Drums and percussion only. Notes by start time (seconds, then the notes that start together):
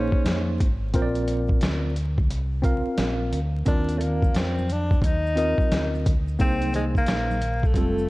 0.12 kick
0.26 snare, closed hi-hat
0.60 kick, closed hi-hat
0.94 kick, closed hi-hat
1.15 closed hi-hat
1.28 closed hi-hat
1.49 kick
1.61 snare, closed hi-hat
1.96 closed hi-hat
2.18 kick
2.30 closed hi-hat
2.64 kick, closed hi-hat
2.98 snare, closed hi-hat
3.33 closed hi-hat
3.66 kick, closed hi-hat, maracas
3.89 closed hi-hat, maracas
4.01 closed hi-hat, low conga, maracas
4.22 kick, maracas
4.34 snare, closed hi-hat, maracas
4.58 high conga, maracas
4.69 closed hi-hat, low conga, maracas
4.91 kick, maracas
5.02 kick, closed hi-hat, high conga, maracas
5.27 maracas
5.37 closed hi-hat, maracas
5.58 kick, high conga, maracas
5.72 snare, closed hi-hat, maracas
5.95 maracas
6.06 kick, closed hi-hat, low conga, maracas
6.28 maracas
6.39 kick, closed hi-hat, maracas
6.62 closed hi-hat, high conga, maracas
6.73 closed hi-hat, low conga, maracas
6.95 kick, maracas
7.06 snare, closed hi-hat, maracas
7.31 high conga, maracas
7.41 closed hi-hat, low conga, maracas
7.63 kick, maracas
7.74 kick, closed hi-hat, high conga, maracas
7.98 maracas